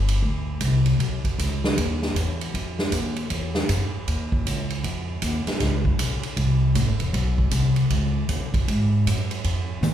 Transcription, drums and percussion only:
0.08 ride
0.23 kick
0.61 kick, hi-hat pedal, ride
0.86 ride
1.00 kick, ride
1.24 kick, ride
1.39 kick, hi-hat pedal, ride
1.64 snare
1.77 kick, ride
2.02 snare
2.16 kick, hi-hat pedal, ride
2.41 ride
2.54 kick, ride
2.79 snare
2.92 kick, hi-hat pedal, ride
3.16 ride
3.30 kick, ride
3.55 snare
3.69 kick, hi-hat pedal, ride
4.08 kick, ride
4.32 kick
4.46 kick, hi-hat pedal, ride
4.70 ride
4.84 kick, ride
5.22 kick, hi-hat pedal, ride
5.47 snare, ride
5.60 kick, snare, ride
5.85 kick
5.99 kick, hi-hat pedal, ride
6.23 ride
6.37 kick, ride
6.75 kick, hi-hat pedal, ride
7.00 ride
7.14 kick, ride
7.38 kick
7.51 kick, hi-hat pedal, ride
7.76 ride
7.90 kick, ride
8.29 kick, hi-hat pedal, ride
8.54 kick, ride
8.68 kick, ride
9.07 kick, hi-hat pedal, ride
9.31 ride
9.44 kick, ride
9.83 hi-hat pedal, high tom

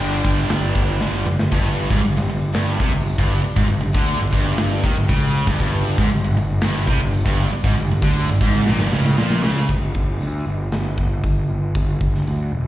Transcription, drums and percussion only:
0.24 kick, crash
0.50 snare, crash
0.75 kick, crash
1.01 snare
1.26 mid tom
1.39 snare
1.51 kick, crash
1.90 kick
2.03 open hi-hat
2.17 snare
2.54 snare, open hi-hat
2.80 kick
3.06 open hi-hat
3.18 kick
3.56 kick, open hi-hat
3.95 kick
4.07 open hi-hat
4.20 snare
4.33 kick
4.58 snare, open hi-hat
4.84 kick
5.09 kick, open hi-hat
5.47 kick
5.60 kick, open hi-hat
5.98 kick
6.10 open hi-hat
6.61 snare, open hi-hat
6.87 kick
7.13 open hi-hat
7.26 kick
7.64 kick, open hi-hat
8.02 kick
8.16 open hi-hat
8.28 snare
8.41 kick
8.66 snare
8.80 snare
8.93 snare
9.06 snare
9.18 snare
9.31 snare
9.44 snare
9.57 snare
9.69 kick, crash
9.95 kick
10.21 open hi-hat
10.72 snare, open hi-hat
10.98 kick
11.24 kick, open hi-hat
11.75 kick, open hi-hat
12.01 kick
12.15 snare
12.27 open hi-hat

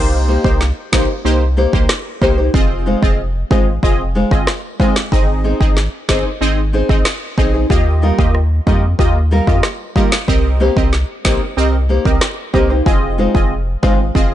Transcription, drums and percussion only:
0.44 kick
0.61 snare
0.93 kick, snare
1.73 kick
1.89 cross-stick, snare
2.22 kick
2.54 kick
3.03 kick
3.51 kick
3.83 kick
4.31 kick
4.47 cross-stick, snare
4.80 kick
4.96 snare
5.12 kick
5.61 kick
5.77 snare
6.09 kick, snare
6.89 kick
7.05 cross-stick, snare
7.38 kick
7.70 kick
8.19 kick
8.35 cross-stick
8.67 kick
8.99 kick
9.47 kick
9.63 cross-stick, snare
9.96 kick
10.12 snare
10.28 kick
10.77 kick
10.93 snare
11.25 kick, snare
12.05 kick
12.21 cross-stick, snare
12.54 kick
12.86 kick
13.35 kick
13.83 kick
14.15 kick

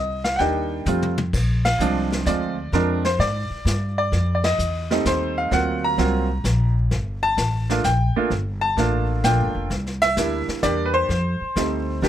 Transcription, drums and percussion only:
0.24 snare
0.39 snare
0.86 hi-hat pedal, mid tom
1.02 mid tom
1.18 mid tom
1.33 brush sweep, kick, snare, crash
1.65 snare, ride
1.80 hi-hat pedal
2.12 snare
2.26 snare, hi-hat pedal
2.73 brush sweep, snare
3.05 snare
3.20 snare
3.66 snare, hi-hat pedal
4.13 brush sweep, snare
4.44 snare, ride
4.59 hi-hat pedal
4.91 snare
5.06 snare, hi-hat pedal
5.52 brush sweep, snare
5.98 snare
6.45 snare, hi-hat pedal
6.91 brush sweep, snare
7.38 snare, hi-hat pedal
7.70 snare
7.84 snare, hi-hat pedal
8.31 brush sweep, snare
8.77 snare
9.24 snare, hi-hat pedal
9.71 brush sweep, snare
9.86 snare
10.02 snare
10.17 snare, hi-hat pedal
10.49 snare
10.63 snare, hi-hat pedal
11.10 brush sweep, snare
11.56 snare, hi-hat pedal
12.03 snare

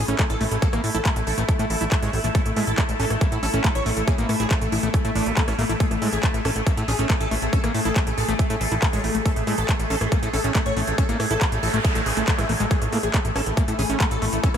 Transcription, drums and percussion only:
0.08 closed hi-hat
0.19 kick, cross-stick, clap, closed hi-hat
0.30 closed hi-hat
0.41 open hi-hat
0.51 closed hi-hat
0.62 kick, closed hi-hat
0.73 cross-stick, closed hi-hat
0.84 open hi-hat
0.95 closed hi-hat
1.05 kick, clap, closed hi-hat
1.16 closed hi-hat
1.27 open hi-hat
1.38 cross-stick, closed hi-hat
1.49 kick, closed hi-hat
1.59 closed hi-hat
1.70 open hi-hat
1.81 closed hi-hat
1.92 kick, cross-stick, clap, closed hi-hat
2.02 closed hi-hat
2.13 open hi-hat
2.24 closed hi-hat
2.35 kick, closed hi-hat
2.46 closed hi-hat
2.56 cross-stick, open hi-hat
2.67 closed hi-hat
2.78 kick, clap, closed hi-hat
2.89 closed hi-hat
3.00 open hi-hat
3.10 cross-stick, closed hi-hat
3.21 kick, closed hi-hat
3.32 closed hi-hat
3.43 open hi-hat
3.54 closed hi-hat
3.64 kick, clap, closed hi-hat
3.75 cross-stick, closed hi-hat
3.86 open hi-hat
3.97 closed hi-hat
4.08 kick, closed hi-hat
4.18 closed hi-hat
4.29 cross-stick, open hi-hat
4.40 closed hi-hat
4.51 kick, clap, closed hi-hat
4.62 closed hi-hat
4.72 open hi-hat
4.83 closed hi-hat
4.94 kick, cross-stick, closed hi-hat
5.05 closed hi-hat
5.15 open hi-hat
5.26 closed hi-hat
5.37 kick, clap, closed hi-hat
5.48 cross-stick, closed hi-hat
5.59 open hi-hat
5.69 closed hi-hat
5.80 kick, closed hi-hat
5.91 cross-stick, closed hi-hat
6.02 open hi-hat
6.13 closed hi-hat
6.23 kick, clap, closed hi-hat
6.34 closed hi-hat
6.45 cross-stick, open hi-hat
6.56 closed hi-hat
6.67 kick, closed hi-hat
6.77 closed hi-hat
6.88 open hi-hat
6.99 closed hi-hat
7.10 kick, cross-stick, clap, closed hi-hat
7.21 closed hi-hat
7.31 open hi-hat
7.42 closed hi-hat
7.53 kick, closed hi-hat
7.64 cross-stick, closed hi-hat
7.74 open hi-hat
7.85 closed hi-hat
7.96 kick, clap, closed hi-hat
8.07 closed hi-hat
8.18 open hi-hat
8.28 cross-stick, closed hi-hat
8.39 kick, closed hi-hat
8.50 closed hi-hat
8.61 open hi-hat
8.72 closed hi-hat
8.82 kick, cross-stick, clap, closed hi-hat
8.93 closed hi-hat
9.04 open hi-hat
9.15 closed hi-hat
9.26 kick, closed hi-hat
9.36 closed hi-hat
9.47 cross-stick, open hi-hat
9.58 closed hi-hat
9.69 kick, clap, closed hi-hat
9.80 closed hi-hat
9.90 open hi-hat
10.01 cross-stick, closed hi-hat
10.12 kick, closed hi-hat
10.23 closed hi-hat
10.33 open hi-hat
10.44 closed hi-hat
10.55 kick, clap, closed hi-hat
10.66 cross-stick, closed hi-hat
10.77 open hi-hat
10.87 closed hi-hat
10.98 kick, closed hi-hat
11.09 closed hi-hat
11.20 cross-stick, open hi-hat
11.31 closed hi-hat
11.41 kick, clap, closed hi-hat
11.52 closed hi-hat
11.63 open hi-hat
11.74 closed hi-hat
11.85 kick, cross-stick, closed hi-hat
11.95 closed hi-hat
12.06 open hi-hat
12.17 closed hi-hat
12.28 kick, clap, closed hi-hat
12.38 cross-stick, closed hi-hat
12.49 open hi-hat
12.60 closed hi-hat
12.71 kick, closed hi-hat
12.82 cross-stick, closed hi-hat
12.92 open hi-hat
13.03 closed hi-hat
13.14 kick, clap, closed hi-hat
13.25 closed hi-hat
13.36 cross-stick, open hi-hat
13.46 closed hi-hat
13.57 kick, closed hi-hat
13.68 closed hi-hat
13.79 open hi-hat
13.90 closed hi-hat
14.00 kick, cross-stick, clap, closed hi-hat
14.11 closed hi-hat
14.22 open hi-hat
14.33 closed hi-hat
14.44 kick, closed hi-hat
14.54 cross-stick, closed hi-hat

